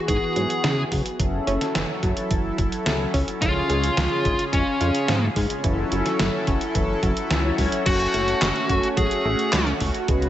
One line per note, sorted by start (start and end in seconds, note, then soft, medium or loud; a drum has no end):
0.00 1.17 E3 medium
0.00 0.33 B3 medium
0.00 1.17 B3 medium
0.00 0.33 E4 medium
0.00 0.33 F#4 medium
0.00 1.17 F#4 medium
0.00 0.33 G#4 medium
0.00 1.17 G#4 medium
0.08 0.19 G#2 loud
0.08 0.30 E3 loud
0.08 0.81 G#4 medium
0.08 kick loud
0.08 closed hi-hat medium
0.36 0.46 G#2 medium
0.36 0.58 F#3 loud
0.36 closed hi-hat medium
0.50 closed hi-hat medium
0.64 0.85 C#3 medium
0.64 0.85 E3 medium
0.64 snare loud
0.64 closed hi-hat medium
0.92 1.02 C#3 medium
0.92 1.18 F#3 medium
0.92 kick medium
0.92 open hi-hat medium
1.06 closed hi-hat medium
1.19 1.40 F#1 medium
1.19 3.39 F#3 medium
1.19 1.41 F#3 medium
1.19 7.82 C#4 medium
1.19 2.55 C#4 medium
1.19 3.39 E4 medium
1.19 2.55 E4 medium
1.19 2.55 F#4 medium
1.19 3.39 A4 medium
1.19 2.55 A4 medium
1.19 kick loud
1.19 closed hi-hat medium
1.47 1.58 F#1 loud
1.47 1.69 C#4 loud
1.47 closed hi-hat medium
1.61 snare soft
1.61 closed hi-hat medium
1.75 1.85 F#1 medium
1.75 1.96 E3 loud
1.75 snare loud
1.75 closed hi-hat loud
2.03 2.13 F#1 loud
2.03 2.24 F#3 loud
2.03 kick loud
2.03 closed hi-hat medium
2.17 closed hi-hat medium
2.31 2.51 F#1 medium
2.31 2.52 E3 medium
2.31 kick loud
2.31 closed hi-hat medium
2.58 2.69 F#1 medium
2.58 2.85 F#3 medium
2.58 kick loud
2.58 closed hi-hat medium
2.72 closed hi-hat medium
2.86 3.07 C#2 medium
2.86 3.07 F#3 medium
2.86 snare loud
2.86 closed hi-hat medium
3.14 3.24 C#2 medium
3.14 3.35 C#4 loud
3.14 kick medium
3.14 open hi-hat medium
3.28 closed hi-hat medium
3.42 3.62 C#2 medium
3.42 5.62 C#3 medium
3.42 3.63 F3 loud
3.42 4.77 C#4 medium
3.42 4.42 F4 loud
3.42 4.77 F4 medium
3.42 5.62 F4 medium
3.42 4.77 G#4 medium
3.42 5.62 G#4 medium
3.42 4.77 C#5 medium
3.42 kick loud
3.42 closed hi-hat loud
3.69 3.90 C#2 medium
3.69 3.91 G#3 loud
3.69 closed hi-hat medium
3.83 closed hi-hat medium
3.97 4.08 C#2 medium
3.97 4.19 F3 medium
3.97 snare loud
3.97 closed hi-hat loud
4.25 4.35 G#1 medium
4.25 4.51 G#3 medium
4.25 kick loud
4.25 closed hi-hat medium
4.39 closed hi-hat medium
4.53 4.63 F2 loud
4.53 4.74 G#3 medium
4.53 5.25 C#4 medium
4.53 kick loud
4.53 closed hi-hat medium
4.81 4.91 F2 medium
4.81 5.02 F4 loud
4.81 closed hi-hat medium
4.95 closed hi-hat medium
5.08 5.29 G#2 medium
5.08 5.30 F3 loud
5.08 snare loud
5.08 closed hi-hat medium
5.36 5.47 G#2 medium
5.36 5.58 G#3 loud
5.36 kick medium
5.36 open hi-hat medium
5.50 closed hi-hat medium
5.64 5.85 F#1 medium
5.64 5.85 E3 medium
5.64 7.84 F#3 medium
5.64 7.00 C#4 medium
5.64 7.84 E4 medium
5.64 7.00 E4 medium
5.64 7.00 F#4 medium
5.64 7.84 A4 medium
5.64 7.00 A4 medium
5.64 kick loud
5.64 closed hi-hat medium
5.92 6.02 F#1 loud
5.92 6.18 F#3 medium
5.92 closed hi-hat medium
6.06 snare soft
6.06 closed hi-hat medium
6.19 6.30 F#1 medium
6.19 6.41 F#3 medium
6.19 snare loud
6.19 closed hi-hat loud
6.47 6.58 F#1 medium
6.47 6.69 C#4 loud
6.47 kick loud
6.47 closed hi-hat medium
6.61 closed hi-hat medium
6.75 6.96 F#1 medium
6.75 6.96 E3 loud
6.75 kick loud
6.75 closed hi-hat medium
7.03 7.13 F#1 medium
7.03 7.24 F#3 loud
7.03 kick loud
7.03 closed hi-hat medium
7.17 closed hi-hat medium
7.31 7.51 C#2 medium
7.31 7.52 E3 medium
7.31 snare loud
7.31 closed hi-hat medium
7.44 7.83 C#4 medium
7.44 7.83 E4 medium
7.44 7.83 F#4 medium
7.44 7.83 C#5 medium
7.58 7.69 C#2 medium
7.58 7.85 F#3 medium
7.58 kick medium
7.58 open hi-hat medium
7.72 closed hi-hat medium
7.86 8.07 F#1 medium
7.86 8.08 F#3 medium
7.86 10.06 A3 medium
7.86 9.22 C#4 medium
7.86 10.06 C#4 medium
7.86 9.22 F#4 medium
7.86 8.86 F#4 loud
7.86 10.29 F#4 medium
7.86 9.22 A4 medium
7.86 9.22 C#5 medium
7.86 kick loud
7.86 closed hi-hat loud
7.86 crash loud
8.00 closed hi-hat soft
8.14 8.35 F#1 medium
8.14 8.40 A3 medium
8.14 closed hi-hat medium
8.28 closed hi-hat soft
8.42 8.52 F#1 medium
8.42 8.63 A3 medium
8.42 snare loud
8.42 clap loud
8.42 closed hi-hat loud
8.56 closed hi-hat soft
8.69 8.80 F#2 medium
8.69 8.91 F#4 loud
8.69 kick loud
8.69 closed hi-hat medium
8.83 closed hi-hat soft
8.97 9.08 A1 loud
8.97 9.19 F#3 loud
8.97 9.69 G#4 medium
8.97 kick loud
8.97 closed hi-hat medium
9.11 closed hi-hat soft
9.25 9.35 A1 medium
9.25 9.47 A3 loud
9.39 closed hi-hat soft
9.53 9.73 C#2 medium
9.53 9.74 F#3 medium
9.53 snare loud
9.53 clap loud
9.53 closed hi-hat loud
9.67 closed hi-hat soft
9.80 9.91 C#2 medium
9.80 10.07 A3 medium
9.80 kick medium
9.80 open hi-hat medium
9.94 closed hi-hat soft
10.08 10.29 C#2 medium
10.08 10.29 C#3 medium
10.08 10.29 G#3 medium
10.08 10.29 B3 medium
10.08 10.29 C#4 medium
10.08 10.29 F#4 medium
10.08 10.29 G#4 medium
10.08 10.29 B4 medium
10.08 kick loud
10.08 closed hi-hat loud
10.22 closed hi-hat soft